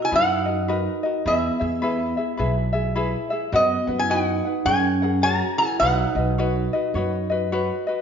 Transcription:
Already playing: F#4 A#4 D#5
0.02 E4 G#5
0.11 F#2 D#4 F#4 A#4 B4 D#5
0.16 F#5
0.46 F#4 A#4 D#5
0.68 F#4 A#4 B4 D#5
1.03 F#4 A#4 D#5
1.26 E2 B3 E4 G#4 B4 E5
1.60 E2 E4 G#4 E5
1.82 E4 G#4 B4 E5
1.87 D#5
2.17 E4 G#4 E5
2.37 B1 E4 G#4 B4 E5
2.73 E4 G#4 E5
2.95 E4 G#4 B4 E5
3.30 E4 G#4 E5
3.52 F#2 B3 F#4 B4 D#5 F#5
3.87 F#2 F#4 B4 F#5
3.99 E4 G#5
4.10 D#4 F#4 B4 D#5 F#5
4.45 F#4 B4 F#5
4.65 F#2 C#4 G#4 A#4 C#5 F#5 G#5
5.02 G#4 A#4 F#5
5.22 F#4 G#4 A#4 C#5 F#5 A#5
5.58 E4 G#4 A#4 F#5 G#5
5.80 B1 D#4 F#4 B4 C#5 D#5 F#5
6.15 B1 F#4 B4 D#5
6.38 F#4 B4 C#5 D#5
6.73 F#4 B4 D#5
6.94 F#2 F#4 B4 C#5 D#5
7.30 F#4 B4 D#5
7.52 F#4 B4 C#5 D#5
7.87 F#4 B4 D#5

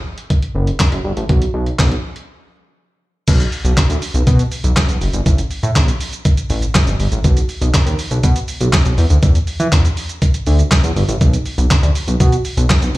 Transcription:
0.18 closed hi-hat
0.30 kick, closed hi-hat
0.42 closed hi-hat
0.55 F#1
0.67 closed hi-hat
0.80 kick, snare, clap, closed hi-hat
0.92 F#1, closed hi-hat
1.04 G1
1.17 A1, closed hi-hat
1.29 B1, kick, closed hi-hat
1.42 closed hi-hat
1.54 B1
1.66 closed hi-hat
1.79 B1, kick, snare, clap, closed hi-hat
1.92 closed hi-hat
2.16 closed hi-hat
3.28 B1, kick, closed hi-hat, crash, shaker
3.40 closed hi-hat, shaker
3.52 open hi-hat, shaker
3.65 B1, closed hi-hat, shaker
3.77 kick, snare, clap, closed hi-hat, shaker
3.90 D2, closed hi-hat, shaker
4.02 open hi-hat, shaker
4.14 B1, closed hi-hat, shaker
4.27 B2, kick, closed hi-hat, shaker
4.39 closed hi-hat, shaker
4.52 open hi-hat, shaker
4.64 B1, closed hi-hat, shaker
4.76 kick, snare, clap, closed hi-hat, shaker
4.89 B1, closed hi-hat, shaker
5.01 F#1, open hi-hat, shaker
5.13 G1, closed hi-hat, shaker
5.26 A1, kick, closed hi-hat, shaker
5.38 closed hi-hat, shaker
5.51 open hi-hat, shaker
5.63 A2, closed hi-hat, shaker
5.76 B1, kick, snare, clap, closed hi-hat, shaker
5.88 closed hi-hat, shaker
6.00 open hi-hat, shaker
6.13 closed hi-hat, shaker
6.25 kick, closed hi-hat, shaker
6.37 closed hi-hat, shaker
6.50 A1, open hi-hat, shaker
6.62 closed hi-hat, shaker
6.75 kick, snare, clap, closed hi-hat, shaker
6.87 G1, closed hi-hat, shaker
6.99 G1, open hi-hat, shaker
7.12 A1, closed hi-hat, shaker
7.24 B1, kick, closed hi-hat, shaker
7.37 closed hi-hat, shaker
7.49 open hi-hat, shaker
7.61 B1, closed hi-hat, shaker
7.74 kick, snare, clap, closed hi-hat, shaker
7.86 D#2, closed hi-hat, shaker
7.99 open hi-hat, shaker
8.11 B1, closed hi-hat, shaker
8.23 B2, kick, closed hi-hat, shaker
8.36 closed hi-hat, shaker
8.48 open hi-hat, shaker
8.61 B1, closed hi-hat, shaker
8.73 kick, snare, clap, closed hi-hat, shaker
8.85 B1, closed hi-hat, shaker
8.98 E2, open hi-hat, shaker
9.10 D2, closed hi-hat, shaker
9.23 E2, kick, closed hi-hat, shaker
9.35 closed hi-hat, shaker
9.47 open hi-hat, shaker
9.60 E3, closed hi-hat, shaker
9.72 E2, kick, snare, clap, closed hi-hat, shaker
9.85 closed hi-hat, shaker
9.97 open hi-hat, shaker
10.09 closed hi-hat, shaker
10.22 kick, closed hi-hat, shaker
10.34 closed hi-hat, shaker
10.46 D2, open hi-hat, shaker
10.59 closed hi-hat, shaker
10.71 kick, snare, clap, closed hi-hat, shaker
10.84 E2, closed hi-hat, shaker
10.96 G1, open hi-hat, shaker
11.08 A1, closed hi-hat, shaker
11.21 B1, kick, closed hi-hat, shaker
11.34 closed hi-hat, shaker
11.46 open hi-hat, shaker
11.58 B1, closed hi-hat, shaker
11.70 kick, snare, clap, closed hi-hat, shaker
11.83 D2, closed hi-hat, shaker
11.95 open hi-hat, shaker
12.08 B1, closed hi-hat, shaker
12.20 B2, kick, closed hi-hat, shaker
12.32 closed hi-hat, shaker
12.45 open hi-hat, shaker
12.57 B1, closed hi-hat, shaker
12.70 kick, snare, clap, closed hi-hat, shaker
12.82 B1, closed hi-hat, shaker

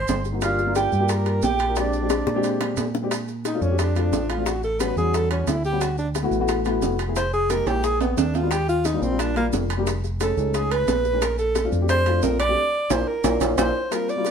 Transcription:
Already playing: C5 C6
0.08 G1, high bongo, low bongo, high timbale, low timbale, maracas
0.25 high bongo, maracas
0.32 A#3 C4 D#4 F#4
0.41 A#3 D4 F4 G4 F5, high bongo, high timbale, maracas
0.58 high bongo, maracas
0.66 A#3 D4 F4 A#4
0.75 G4 G5, high bongo, high timbale, low timbale, maracas
0.92 G2, maracas
0.99 A#3 D4 F4 G4
1.09 A#4 A#5, high bongo, high timbale, maracas
1.26 high bongo, high timbale, maracas
1.42 A#1 G4 G5, high bongo, low bongo, low timbale, maracas
1.59 high bongo, high timbale, maracas
1.67 A#3 D4 F4 A#4
1.76 G#3 C4 D4 G4 D5, high bongo, high timbale, maracas
1.93 high bongo, maracas
2.01 G#3 C4 D4 G4
2.10 high bongo, high timbale, low timbale, maracas
2.27 A#2, high bongo, maracas
2.34 G#3 C4 D4 G4
2.43 high timbale, maracas
2.61 low bongo, high timbale, maracas
2.77 A#2, high timbale, low timbale, maracas
2.94 low bongo, maracas
3.02 G#3 C4 D4 G4
3.11 high bongo, high timbale, maracas
3.28 high bongo, maracas
3.45 D#4, high bongo, high timbale, low timbale, maracas
3.53 A3 C4 D4 F4
3.61 F2 C#4, maracas
3.69 A3 C4 D4 G4
3.79 D4, high bongo, high timbale, maracas
3.95 A3 C4 D4 F4, high bongo, high timbale, maracas
4.12 A1, high bongo, low bongo, low timbale, maracas
4.30 F4, high bongo, high timbale, maracas
4.37 A3 C4 D4 F4
4.46 F#4, high bongo, high timbale, maracas
4.63 A4, high bongo, maracas
4.79 G3 B3 C#4 F#4 B4, high bongo, high timbale, low timbale, maracas
4.96 E2 G3 B3 C#4 F#4 G#4, maracas
5.14 A4, high bongo, high timbale, maracas
5.31 C#4, high bongo, high timbale, maracas
5.47 D2 E4, high bongo, low bongo, high timbale, low timbale, maracas
5.64 G4, high bongo, maracas
5.71 G3 B3 C#4 F#4
5.81 F#4, high bongo, high timbale, maracas
5.98 D4, high bongo, maracas
6.15 high bongo, high timbale, low timbale, maracas
6.22 A3 B3 E4 F#4
6.31 A1, maracas
6.39 A3 B3 E4 F#4
6.48 high bongo, high timbale, maracas
6.65 A3 B3 E4 F#4, high bongo, high timbale, maracas
6.82 F1, high bongo, low bongo, low timbale, maracas
6.99 high bongo, high timbale, maracas
7.07 A3 B3 E4 G#4
7.16 C5, high bongo, high timbale, maracas
7.33 G#4, high bongo, maracas
7.49 G#3 A#3 D#4 G4 A#4, high bongo, high timbale, low timbale, maracas
7.66 A#1 G#3 A#3 D#4 G4 G#4, high timbale, maracas
7.84 G#4, high bongo, maracas
8.01 B3, high bongo, low timbale, maracas
8.17 D#2 D4, high bongo, low bongo, low timbale, maracas
8.34 F4, high bongo, low timbale, maracas
8.42 G#3 B3 D4 F4
8.51 G4, high bongo, high timbale, maracas
8.67 F4, high bongo, maracas
8.85 D#4, high bongo, high timbale, low timbale, maracas
8.92 G3 A#3 D4 F4
9.02 A#1 C4, maracas
9.09 G3 A#3 D4 F4
9.19 D4, high bongo, high timbale, maracas
9.35 G3 A#3 D4 F4, high bongo, high timbale, maracas
9.53 F1, high bongo, low bongo, low timbale, maracas
9.70 high bongo, high timbale, maracas
9.77 G3 A#3 D4 G4
9.87 high bongo, high timbale, maracas
10.04 high bongo, maracas
10.20 A3 C#4 D#4 G#4 A4, high bongo, high timbale, low timbale, maracas
10.37 C#2 A3 C#4 D#4 G#4, maracas
10.54 G#4, high bongo, high timbale, maracas
10.71 B4, high bongo, high timbale, maracas
10.88 A#1, high bongo, low bongo, high timbale, low timbale, maracas
11.05 high bongo, maracas
11.13 A3 C#4 D#4 G#4
11.22 A#4, high bongo, high timbale, maracas
11.38 A4, high bongo, maracas
11.55 high bongo, high timbale, low timbale, maracas
11.63 A3 C4 D4 F4
11.72 F2, maracas
11.80 A3 C4 D4 G4
11.89 C5, high bongo, high timbale, maracas
12.06 A3 C4 D4 F4, high bongo, high timbale, maracas
12.22 A#1 A#4, high bongo, low bongo, low timbale, maracas
12.39 D5, high bongo, high timbale, maracas
12.47 A3 C4 D4 G4
12.90 A#1 A#3 D4 F4 C5, low bongo, high timbale, maracas
13.07 A#4
13.24 A#1 A#3 D4 F4, low bongo, high timbale, maracas
13.41 A#1 A#3 D4 F4, low bongo, high timbale, maracas
13.57 A#1 A#3 D4 F4 C5, low bongo, high timbale, maracas
13.91 G3 A#3 C4 F4 A#4, high bongo, high timbale, maracas
14.09 D5, high bongo, maracas
14.16 G3 A#3 C4 F4
14.25 high bongo, high timbale, low timbale, maracas

